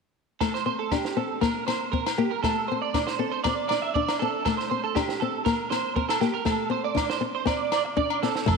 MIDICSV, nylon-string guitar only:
0, 0, Header, 1, 2, 480
1, 0, Start_track
1, 0, Tempo, 504626
1, 385, Time_signature, 4, 2, 24, 8
1, 8152, End_track
2, 0, Start_track
2, 0, Title_t, "Nylon-string guitar"
2, 0, Program_c, 0, 24
2, 392, Note_on_c, 0, 57, 69
2, 564, Note_off_c, 0, 57, 0
2, 627, Note_on_c, 0, 60, 61
2, 801, Note_off_c, 0, 60, 0
2, 878, Note_on_c, 0, 62, 67
2, 1048, Note_off_c, 0, 62, 0
2, 1110, Note_on_c, 0, 60, 63
2, 1283, Note_off_c, 0, 60, 0
2, 1345, Note_on_c, 0, 58, 74
2, 1520, Note_off_c, 0, 58, 0
2, 1594, Note_on_c, 0, 60, 60
2, 1766, Note_off_c, 0, 60, 0
2, 1839, Note_on_c, 0, 60, 65
2, 2010, Note_off_c, 0, 60, 0
2, 2076, Note_on_c, 0, 58, 70
2, 2247, Note_off_c, 0, 58, 0
2, 2322, Note_on_c, 0, 57, 73
2, 2492, Note_off_c, 0, 57, 0
2, 2583, Note_on_c, 0, 60, 61
2, 2745, Note_off_c, 0, 60, 0
2, 2804, Note_on_c, 0, 62, 67
2, 2973, Note_off_c, 0, 62, 0
2, 3036, Note_on_c, 0, 60, 61
2, 3208, Note_off_c, 0, 60, 0
2, 3294, Note_on_c, 0, 60, 79
2, 3460, Note_off_c, 0, 60, 0
2, 3527, Note_on_c, 0, 62, 60
2, 3695, Note_off_c, 0, 62, 0
2, 3766, Note_on_c, 0, 62, 73
2, 3935, Note_off_c, 0, 62, 0
2, 4014, Note_on_c, 0, 60, 73
2, 4179, Note_off_c, 0, 60, 0
2, 4252, Note_on_c, 0, 57, 77
2, 4418, Note_off_c, 0, 57, 0
2, 4481, Note_on_c, 0, 60, 64
2, 4651, Note_off_c, 0, 60, 0
2, 4717, Note_on_c, 0, 62, 77
2, 4888, Note_off_c, 0, 62, 0
2, 4966, Note_on_c, 0, 60, 65
2, 5134, Note_off_c, 0, 60, 0
2, 5192, Note_on_c, 0, 58, 83
2, 5365, Note_off_c, 0, 58, 0
2, 5438, Note_on_c, 0, 60, 66
2, 5608, Note_off_c, 0, 60, 0
2, 5673, Note_on_c, 0, 60, 69
2, 5845, Note_off_c, 0, 60, 0
2, 5910, Note_on_c, 0, 58, 73
2, 6083, Note_off_c, 0, 58, 0
2, 6136, Note_on_c, 0, 57, 76
2, 6314, Note_off_c, 0, 57, 0
2, 6371, Note_on_c, 0, 60, 66
2, 6550, Note_off_c, 0, 60, 0
2, 6608, Note_on_c, 0, 62, 76
2, 6788, Note_off_c, 0, 62, 0
2, 6855, Note_on_c, 0, 60, 61
2, 7032, Note_off_c, 0, 60, 0
2, 7091, Note_on_c, 0, 60, 78
2, 7269, Note_off_c, 0, 60, 0
2, 7577, Note_on_c, 0, 62, 75
2, 7753, Note_off_c, 0, 62, 0
2, 7830, Note_on_c, 0, 60, 73
2, 8000, Note_off_c, 0, 60, 0
2, 8048, Note_on_c, 0, 57, 86
2, 8152, Note_off_c, 0, 57, 0
2, 8152, End_track
0, 0, End_of_file